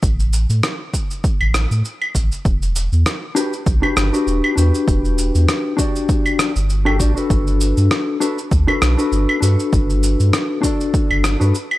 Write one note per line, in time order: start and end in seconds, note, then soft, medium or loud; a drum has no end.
0.03 0.46 A1 medium
0.03 kick loud
0.03 cabasa soft
0.20 cabasa soft
0.33 cabasa medium
0.49 0.61 A2 loud
0.49 cabasa soft
0.63 cross-stick medium
0.63 cabasa soft
0.94 kick medium
0.94 cabasa medium
1.11 cabasa soft
1.24 kick loud
1.24 cabasa soft
1.41 1.66 A1 loud
1.41 claves medium
1.54 cross-stick medium
1.54 cabasa medium
1.71 1.83 A2 loud
1.71 cabasa soft
1.85 cabasa soft
2.02 claves medium
2.15 2.29 A1 medium
2.15 kick medium
2.15 cabasa medium
2.32 cabasa soft
2.45 2.88 E1 medium
2.45 kick loud
2.45 cabasa soft
2.62 cabasa soft
2.76 cabasa medium
2.92 3.04 E2 loud
2.92 cabasa soft
3.06 cross-stick medium
3.06 cabasa soft
3.35 3.52 D4 medium
3.35 3.52 F#4 medium
3.35 3.52 G4 medium
3.35 3.53 B4 loud
3.35 cabasa medium
3.53 cabasa soft
3.66 3.81 B1 medium
3.66 kick loud
3.66 cabasa soft
3.82 4.09 D4 medium
3.82 4.09 F#4 medium
3.82 4.09 G4 medium
3.82 4.10 B4 medium
3.82 claves medium
3.97 4.11 G1 loud
3.97 cross-stick medium
3.97 cabasa medium
4.13 4.54 D4 medium
4.13 4.54 F#4 medium
4.13 4.54 G4 medium
4.13 4.55 B4 medium
4.13 cabasa soft
4.27 4.41 E1 medium
4.27 cabasa soft
4.44 claves medium
4.56 4.72 E2 medium
4.56 5.74 D4 medium
4.56 5.75 F#4 medium
4.56 5.76 G4 medium
4.56 5.76 B4 medium
4.56 cabasa medium
4.74 cabasa soft
4.88 5.31 E1 loud
4.88 kick loud
4.88 cabasa soft
5.05 cabasa soft
5.18 cabasa medium
5.35 5.46 E2 loud
5.35 cabasa soft
5.49 cross-stick medium
5.49 cabasa soft
5.77 6.51 D4 medium
5.77 6.52 F#4 medium
5.77 6.52 G4 medium
5.77 6.53 D5 medium
5.77 kick medium
5.77 cabasa medium
5.96 cabasa soft
6.09 kick loud
6.09 cabasa soft
6.26 cabasa soft
6.26 claves medium
6.39 cross-stick medium
6.39 cabasa medium
6.56 7.02 G1 medium
6.56 cabasa soft
6.70 cabasa soft
6.85 6.97 D4 medium
6.85 6.98 F#4 medium
6.85 6.98 G4 medium
6.85 6.98 A4 loud
6.85 claves medium
6.99 7.14 A1 medium
6.99 7.12 D4 medium
6.99 7.12 F#4 medium
6.99 7.13 G4 medium
6.99 7.13 D5 loud
6.99 kick medium
6.99 cabasa medium
7.15 8.17 D4 medium
7.15 8.17 F#4 medium
7.15 8.18 A4 medium
7.15 8.19 B4 medium
7.15 cabasa soft
7.30 7.73 G1 medium
7.30 kick loud
7.30 cabasa soft
7.47 cabasa soft
7.61 cabasa medium
7.77 7.89 G2 loud
7.77 cabasa soft
7.91 cross-stick medium
7.91 cabasa soft
8.20 8.37 D4 loud
8.20 8.37 F#4 medium
8.20 8.37 A4 medium
8.20 8.38 B4 loud
8.20 cabasa medium
8.38 cabasa soft
8.51 8.66 D2 medium
8.51 kick loud
8.51 cabasa soft
8.67 8.94 D4 medium
8.67 8.94 F#4 medium
8.67 8.95 A4 medium
8.67 8.95 B4 medium
8.67 claves medium
8.81 8.96 B1 loud
8.81 cross-stick medium
8.81 cabasa medium
8.98 9.39 D4 medium
8.98 9.39 F#4 medium
8.98 9.39 A4 medium
8.98 9.39 B4 loud
8.98 cabasa soft
9.12 9.26 G1 medium
9.12 cabasa soft
9.29 claves medium
9.40 9.56 G2 medium
9.40 10.59 D4 medium
9.40 10.60 F#4 medium
9.40 10.61 A4 medium
9.40 10.61 B4 loud
9.40 cabasa medium
9.59 cabasa soft
9.73 10.16 G1 loud
9.73 kick loud
9.73 cabasa soft
9.90 cabasa soft
10.03 cabasa medium
10.20 10.31 G2 loud
10.20 cabasa soft
10.33 cross-stick medium
10.33 cabasa soft
10.62 11.36 D4 medium
10.62 11.36 F#4 medium
10.62 11.37 A4 medium
10.62 11.38 D5 loud
10.62 kick medium
10.62 cabasa medium
10.80 cabasa soft
10.94 kick loud
10.94 cabasa soft
11.10 11.36 G1 medium
11.10 claves medium
11.24 cross-stick medium
11.24 cabasa medium
11.40 11.52 G2 loud
11.40 11.53 D4 medium
11.40 11.54 F#4 medium
11.40 11.54 A4 medium
11.40 11.54 B4 medium
11.40 cabasa soft
11.55 cabasa soft
11.71 claves medium